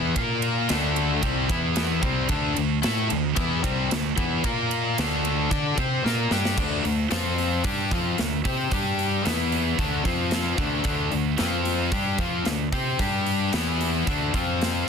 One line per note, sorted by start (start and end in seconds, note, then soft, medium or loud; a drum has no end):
0.00 0.15 E2 loud
0.00 0.16 E3 medium
0.00 0.16 B3 medium
0.00 0.17 E4 loud
0.16 0.66 A#2 medium
0.16 0.69 A#3 medium
0.16 0.70 F4 loud
0.16 0.70 A#4 loud
0.16 kick loud
0.16 ride medium
0.42 ride medium
0.69 1.20 D2 medium
0.69 1.22 D3 medium
0.69 1.23 A3 loud
0.69 1.23 D4 loud
0.69 snare loud
0.69 ride medium
0.96 ride medium
1.23 1.48 C2 medium
1.23 1.49 C3 medium
1.23 1.50 G3 loud
1.23 1.50 C4 loud
1.23 kick medium
1.23 ride medium
1.50 2.00 E2 medium
1.50 2.01 E3 medium
1.50 2.02 B3 medium
1.50 2.03 E4 loud
1.50 kick loud
1.50 ride medium
1.76 snare loud
1.76 ride medium
2.02 2.28 C2 loud
2.02 2.29 C3 medium
2.02 2.29 G3 medium
2.02 2.29 C4 loud
2.02 kick loud
2.02 ride medium
2.29 2.55 D2 medium
2.29 2.53 D3 loud
2.29 2.54 A3 medium
2.29 2.56 D4 loud
2.29 kick loud
2.29 ride medium
2.55 2.82 D2 medium
2.55 2.77 D3 medium
2.55 2.77 A3 medium
2.55 ride medium
2.82 3.10 A2 medium
2.82 3.07 A3 medium
2.82 3.09 E4 loud
2.82 3.10 A4 loud
2.82 snare loud
2.82 ride medium
3.08 3.36 D2 medium
3.08 3.31 D3 medium
3.08 3.31 A3 medium
3.08 ride medium
3.36 3.62 E2 medium
3.36 3.61 E3 medium
3.36 3.63 B3 loud
3.36 3.62 E4 loud
3.36 kick medium
3.36 ride medium
3.62 3.89 C2 medium
3.62 3.89 C3 medium
3.62 3.89 G3 medium
3.62 3.90 C4 medium
3.62 kick loud
3.62 ride medium
3.90 4.16 D2 medium
3.90 4.11 D3 medium
3.90 4.12 A3 medium
3.90 snare medium
3.90 ride medium
4.17 4.43 E2 loud
4.17 4.43 E3 medium
4.17 4.43 B3 medium
4.17 4.43 E4 medium
4.17 kick medium
4.17 ride medium
4.44 4.94 A#2 medium
4.44 4.97 A#3 loud
4.44 4.97 F4 loud
4.44 4.97 A#4 loud
4.44 kick loud
4.44 ride medium
4.71 ride medium
4.98 5.47 D2 medium
4.98 5.50 D3 medium
4.98 5.51 A3 medium
4.98 5.50 D4 loud
4.98 snare loud
4.98 ride medium
5.25 ride medium
5.51 5.76 D3 medium
5.51 5.77 D4 loud
5.51 5.77 A4 loud
5.51 5.77 D5 loud
5.51 kick medium
5.51 ride medium
5.77 6.02 C3 medium
5.77 6.03 C4 medium
5.77 6.04 G4 medium
5.77 6.04 C5 loud
5.77 kick loud
5.77 ride medium
6.04 6.29 A#2 medium
6.04 6.30 A#3 loud
6.04 6.30 F4 medium
6.04 6.30 A#4 loud
6.04 snare medium
6.31 6.56 G2 medium
6.31 6.57 G3 medium
6.31 6.56 D4 medium
6.31 6.57 G4 loud
6.31 snare medium
6.45 snare medium
6.56 6.83 D2 medium
6.56 6.83 D3 medium
6.56 6.83 A3 medium
6.56 6.83 D4 medium
6.56 kick medium
6.56 crash medium
6.85 7.09 D2 medium
6.85 7.06 D3 medium
6.85 7.06 A3 medium
6.85 open hi-hat soft
7.11 7.61 F2 medium
7.11 7.64 F3 medium
7.11 7.64 C4 medium
7.11 7.64 F4 loud
7.11 snare medium
7.11 open hi-hat medium
7.38 open hi-hat soft
7.64 7.89 G2 medium
7.64 7.90 G3 medium
7.64 7.90 D4 medium
7.64 7.90 G4 medium
7.64 kick medium
7.64 open hi-hat medium
7.91 8.16 F2 medium
7.91 8.17 F3 medium
7.91 8.18 C4 medium
7.91 8.18 F4 medium
7.91 kick medium
7.91 open hi-hat medium
8.18 8.44 D2 medium
8.18 8.40 D3 medium
8.18 8.40 A3 medium
8.18 snare medium
8.18 open hi-hat medium
8.45 8.70 C3 medium
8.45 8.71 C4 medium
8.45 8.71 G4 medium
8.45 8.72 C5 medium
8.45 kick medium
8.45 open hi-hat soft
8.71 9.21 G2 medium
8.71 9.27 G3 medium
8.71 9.27 D4 medium
8.71 9.25 G4 loud
8.71 kick medium
8.71 open hi-hat medium
8.99 open hi-hat soft
9.26 9.75 E2 medium
9.26 9.78 E3 medium
9.26 9.78 B3 medium
9.26 9.78 E4 medium
9.26 snare loud
9.26 open hi-hat medium
9.52 open hi-hat soft
9.78 10.03 D2 medium
9.78 10.04 D3 medium
9.78 10.04 A3 medium
9.78 10.05 D4 loud
9.78 kick medium
9.78 open hi-hat soft
10.05 10.55 F2 medium
10.05 10.57 F3 medium
10.05 10.58 C4 medium
10.05 10.58 F4 medium
10.05 kick medium
10.05 open hi-hat soft
10.31 snare loud
10.31 open hi-hat soft
10.58 10.83 D2 medium
10.58 10.84 D3 medium
10.58 10.84 A3 medium
10.58 10.84 D4 medium
10.58 kick medium
10.58 open hi-hat soft
10.84 11.10 D2 medium
10.84 11.11 D3 medium
10.84 11.11 A3 loud
10.84 11.11 D4 loud
10.84 kick medium
10.84 open hi-hat medium
11.12 11.38 D2 medium
11.12 11.33 D3 medium
11.12 11.33 A3 medium
11.12 open hi-hat medium
11.38 11.89 F2 medium
11.38 11.91 F3 medium
11.38 11.92 C4 medium
11.38 11.92 F4 loud
11.38 snare loud
11.38 open hi-hat medium
11.65 open hi-hat soft
11.92 12.17 G2 medium
11.92 12.18 G3 medium
11.92 12.19 D4 medium
11.92 12.19 G4 loud
11.92 kick medium
11.92 open hi-hat medium
12.18 12.44 F2 medium
12.18 12.45 F3 medium
12.18 12.45 C4 medium
12.18 12.46 F4 medium
12.18 kick medium
12.18 open hi-hat medium
12.45 12.71 D2 medium
12.45 12.68 D3 medium
12.45 12.68 A3 medium
12.45 snare medium
12.45 open hi-hat medium
12.72 12.98 C3 medium
12.72 12.99 C4 medium
12.72 12.99 G4 medium
12.72 12.99 C5 medium
12.72 kick medium
12.72 open hi-hat soft
12.99 13.50 G2 medium
12.99 13.53 G3 medium
12.99 13.53 D4 medium
12.99 13.53 G4 medium
12.99 kick medium
12.99 open hi-hat medium
13.26 open hi-hat medium
13.53 14.03 E2 medium
13.53 14.06 E3 medium
13.53 14.06 B3 medium
13.53 14.07 E4 loud
13.53 snare loud
13.53 open hi-hat medium
13.81 open hi-hat soft
14.07 14.32 D2 medium
14.07 14.34 D3 medium
14.07 14.34 A3 medium
14.07 14.34 D4 loud
14.07 kick medium
14.07 open hi-hat medium
14.34 14.84 F2 medium
14.34 14.87 F3 medium
14.34 14.87 C4 medium
14.34 14.87 F4 medium
14.34 kick medium
14.34 open hi-hat soft
14.61 snare loud
14.61 open hi-hat medium